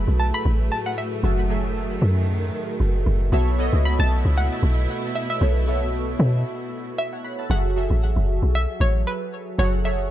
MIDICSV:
0, 0, Header, 1, 5, 480
1, 0, Start_track
1, 0, Tempo, 521739
1, 1139, Time_signature, 4, 2, 24, 8
1, 9299, End_track
2, 0, Start_track
2, 0, Title_t, "Synth pluck"
2, 0, Program_c, 0, 84
2, 0, Note_on_c, 0, 83, 106
2, 157, Note_off_c, 0, 83, 0
2, 180, Note_on_c, 0, 81, 113
2, 315, Note_off_c, 0, 81, 0
2, 315, Note_on_c, 0, 83, 108
2, 660, Note_on_c, 0, 81, 101
2, 671, Note_off_c, 0, 83, 0
2, 782, Note_off_c, 0, 81, 0
2, 792, Note_on_c, 0, 78, 90
2, 840, Note_off_c, 0, 78, 0
2, 900, Note_on_c, 0, 76, 85
2, 1583, Note_off_c, 0, 76, 0
2, 3546, Note_on_c, 0, 83, 111
2, 3665, Note_off_c, 0, 83, 0
2, 3677, Note_on_c, 0, 81, 107
2, 4025, Note_on_c, 0, 78, 98
2, 4032, Note_off_c, 0, 81, 0
2, 4705, Note_off_c, 0, 78, 0
2, 4742, Note_on_c, 0, 76, 85
2, 4865, Note_off_c, 0, 76, 0
2, 4876, Note_on_c, 0, 76, 78
2, 5556, Note_off_c, 0, 76, 0
2, 6425, Note_on_c, 0, 76, 105
2, 6907, Note_on_c, 0, 78, 118
2, 6916, Note_off_c, 0, 76, 0
2, 7867, Note_on_c, 0, 76, 111
2, 7892, Note_off_c, 0, 78, 0
2, 8106, Note_on_c, 0, 73, 99
2, 8110, Note_off_c, 0, 76, 0
2, 8346, Note_on_c, 0, 71, 92
2, 8349, Note_off_c, 0, 73, 0
2, 8789, Note_off_c, 0, 71, 0
2, 8823, Note_on_c, 0, 73, 107
2, 9044, Note_off_c, 0, 73, 0
2, 9063, Note_on_c, 0, 76, 91
2, 9299, Note_off_c, 0, 76, 0
2, 9299, End_track
3, 0, Start_track
3, 0, Title_t, "Synth keys"
3, 0, Program_c, 1, 88
3, 0, Control_c, 1, 64, 127
3, 0, Note_on_c, 1, 54, 78
3, 0, Note_on_c, 1, 66, 69
3, 0, Note_on_c, 1, 68, 72
3, 0, Note_on_c, 1, 69, 73
3, 0, Note_on_c, 1, 71, 83
3, 0, Note_on_c, 1, 76, 84
3, 229, Note_off_c, 1, 54, 0
3, 231, Note_off_c, 1, 66, 0
3, 233, Note_off_c, 1, 68, 0
3, 235, Note_off_c, 1, 69, 0
3, 237, Note_off_c, 1, 71, 0
3, 1133, Note_on_c, 1, 54, 81
3, 1137, Note_on_c, 1, 66, 76
3, 1141, Note_on_c, 1, 68, 72
3, 1145, Note_on_c, 1, 69, 72
3, 1149, Note_off_c, 1, 76, 0
3, 1149, Note_on_c, 1, 76, 88
3, 1333, Note_off_c, 1, 54, 0
3, 1335, Note_off_c, 1, 66, 0
3, 1337, Note_off_c, 1, 68, 0
3, 1339, Note_off_c, 1, 69, 0
3, 1341, Note_off_c, 1, 76, 0
3, 1373, Note_on_c, 1, 54, 79
3, 1376, Note_on_c, 1, 66, 73
3, 1381, Note_on_c, 1, 68, 73
3, 1385, Note_on_c, 1, 69, 71
3, 1388, Note_on_c, 1, 76, 86
3, 2148, Note_off_c, 1, 54, 0
3, 2150, Note_off_c, 1, 66, 0
3, 2152, Note_off_c, 1, 68, 0
3, 2155, Note_off_c, 1, 69, 0
3, 2156, Note_off_c, 1, 76, 0
3, 3055, Note_on_c, 1, 59, 95
3, 3058, Note_on_c, 1, 66, 83
3, 3063, Note_on_c, 1, 69, 88
3, 3067, Note_on_c, 1, 73, 87
3, 3070, Control_c, 1, 64, 0
3, 3071, Note_on_c, 1, 76, 106
3, 3207, Control_c, 1, 64, 127
3, 3253, Note_off_c, 1, 59, 0
3, 3255, Note_off_c, 1, 66, 0
3, 3257, Note_off_c, 1, 69, 0
3, 3260, Note_off_c, 1, 73, 0
3, 3262, Note_off_c, 1, 76, 0
3, 3295, Note_on_c, 1, 59, 90
3, 3300, Note_on_c, 1, 66, 85
3, 3304, Note_on_c, 1, 69, 85
3, 3308, Note_on_c, 1, 73, 84
3, 3313, Note_on_c, 1, 75, 101
3, 4070, Note_off_c, 1, 59, 0
3, 4072, Note_off_c, 1, 66, 0
3, 4074, Note_off_c, 1, 69, 0
3, 4076, Note_off_c, 1, 73, 0
3, 4079, Note_off_c, 1, 75, 0
3, 4978, Note_on_c, 1, 59, 78
3, 4983, Note_on_c, 1, 66, 73
3, 4986, Note_on_c, 1, 69, 70
3, 4990, Note_on_c, 1, 73, 72
3, 4994, Note_on_c, 1, 76, 87
3, 5175, Note_off_c, 1, 59, 0
3, 5177, Note_off_c, 1, 66, 0
3, 5179, Note_off_c, 1, 69, 0
3, 5181, Note_off_c, 1, 73, 0
3, 5183, Note_off_c, 1, 76, 0
3, 5216, Note_on_c, 1, 59, 78
3, 5220, Note_on_c, 1, 66, 69
3, 5224, Note_on_c, 1, 69, 74
3, 5229, Note_on_c, 1, 73, 70
3, 5233, Note_on_c, 1, 76, 87
3, 5990, Note_off_c, 1, 59, 0
3, 5992, Note_off_c, 1, 66, 0
3, 5994, Note_off_c, 1, 69, 0
3, 5996, Note_off_c, 1, 73, 0
3, 5998, Note_off_c, 1, 76, 0
3, 6556, Note_on_c, 1, 78, 66
3, 6562, Note_on_c, 1, 73, 59
3, 6656, Note_off_c, 1, 78, 0
3, 6659, Note_off_c, 1, 73, 0
3, 6664, Note_on_c, 1, 83, 78
3, 6670, Note_on_c, 1, 78, 63
3, 6787, Note_off_c, 1, 83, 0
3, 6790, Note_off_c, 1, 78, 0
3, 6798, Note_on_c, 1, 81, 64
3, 6804, Note_on_c, 1, 76, 53
3, 6896, Note_on_c, 1, 54, 76
3, 6901, Note_on_c, 1, 66, 72
3, 6902, Note_off_c, 1, 76, 0
3, 6904, Note_on_c, 1, 68, 72
3, 6910, Note_on_c, 1, 69, 72
3, 6912, Control_c, 1, 64, 0
3, 6913, Note_on_c, 1, 76, 85
3, 7022, Note_off_c, 1, 81, 0
3, 7046, Control_c, 1, 64, 127
3, 7094, Note_off_c, 1, 54, 0
3, 7097, Note_off_c, 1, 66, 0
3, 7098, Note_off_c, 1, 68, 0
3, 7101, Note_off_c, 1, 69, 0
3, 7103, Note_off_c, 1, 76, 0
3, 7138, Note_on_c, 1, 54, 75
3, 7141, Note_on_c, 1, 66, 74
3, 7147, Note_on_c, 1, 68, 71
3, 7150, Note_on_c, 1, 69, 74
3, 7154, Note_on_c, 1, 76, 87
3, 7911, Note_off_c, 1, 54, 0
3, 7913, Note_off_c, 1, 66, 0
3, 7915, Note_off_c, 1, 68, 0
3, 7917, Note_off_c, 1, 69, 0
3, 7919, Note_off_c, 1, 76, 0
3, 8814, Note_on_c, 1, 54, 82
3, 8818, Note_on_c, 1, 66, 72
3, 8822, Note_on_c, 1, 68, 72
3, 8827, Note_on_c, 1, 69, 70
3, 8831, Note_on_c, 1, 78, 86
3, 9013, Note_off_c, 1, 54, 0
3, 9015, Note_off_c, 1, 66, 0
3, 9017, Note_off_c, 1, 68, 0
3, 9020, Note_off_c, 1, 69, 0
3, 9022, Note_off_c, 1, 78, 0
3, 9053, Note_on_c, 1, 54, 79
3, 9059, Note_on_c, 1, 66, 73
3, 9063, Note_on_c, 1, 68, 69
3, 9067, Note_on_c, 1, 69, 69
3, 9070, Note_on_c, 1, 73, 84
3, 9299, Note_off_c, 1, 54, 0
3, 9299, Note_off_c, 1, 66, 0
3, 9299, Note_off_c, 1, 68, 0
3, 9299, Note_off_c, 1, 69, 0
3, 9299, Note_off_c, 1, 73, 0
3, 9299, End_track
4, 0, Start_track
4, 0, Title_t, "String section"
4, 0, Program_c, 2, 48
4, 0, Note_on_c, 2, 45, 83
4, 0, Note_on_c, 2, 57, 78
4, 0, Note_on_c, 2, 64, 95
4, 1102, Note_off_c, 2, 64, 0
4, 1137, Note_on_c, 2, 51, 91
4, 3021, Note_off_c, 2, 45, 0
4, 3021, Note_off_c, 2, 57, 0
4, 3039, Note_off_c, 2, 51, 0
4, 3061, Note_on_c, 2, 47, 86
4, 3061, Note_on_c, 2, 57, 75
4, 3061, Note_on_c, 2, 64, 90
4, 6863, Note_off_c, 2, 47, 0
4, 6863, Note_off_c, 2, 57, 0
4, 6863, Note_off_c, 2, 64, 0
4, 9299, End_track
5, 0, Start_track
5, 0, Title_t, "Log drum bass"
5, 0, Program_c, 3, 39
5, 70, Note_on_c, 3, 35, 88
5, 295, Note_off_c, 3, 35, 0
5, 418, Note_on_c, 3, 33, 102
5, 643, Note_off_c, 3, 33, 0
5, 1136, Note_on_c, 3, 30, 113
5, 1822, Note_off_c, 3, 30, 0
5, 1857, Note_on_c, 3, 42, 100
5, 2307, Note_off_c, 3, 42, 0
5, 2577, Note_on_c, 3, 30, 95
5, 2803, Note_off_c, 3, 30, 0
5, 2818, Note_on_c, 3, 30, 106
5, 3043, Note_off_c, 3, 30, 0
5, 3056, Note_on_c, 3, 35, 104
5, 3406, Note_off_c, 3, 35, 0
5, 3430, Note_on_c, 3, 37, 88
5, 3655, Note_off_c, 3, 37, 0
5, 3672, Note_on_c, 3, 35, 94
5, 3896, Note_off_c, 3, 35, 0
5, 3910, Note_on_c, 3, 37, 84
5, 4135, Note_off_c, 3, 37, 0
5, 4257, Note_on_c, 3, 35, 97
5, 4483, Note_off_c, 3, 35, 0
5, 4980, Note_on_c, 3, 35, 107
5, 5663, Note_off_c, 3, 35, 0
5, 5699, Note_on_c, 3, 47, 108
5, 5923, Note_off_c, 3, 47, 0
5, 6899, Note_on_c, 3, 30, 113
5, 7247, Note_off_c, 3, 30, 0
5, 7271, Note_on_c, 3, 33, 92
5, 7496, Note_off_c, 3, 33, 0
5, 7510, Note_on_c, 3, 30, 96
5, 7735, Note_off_c, 3, 30, 0
5, 7750, Note_on_c, 3, 35, 81
5, 7975, Note_off_c, 3, 35, 0
5, 8100, Note_on_c, 3, 33, 99
5, 8324, Note_off_c, 3, 33, 0
5, 8820, Note_on_c, 3, 30, 108
5, 9299, Note_off_c, 3, 30, 0
5, 9299, End_track
0, 0, End_of_file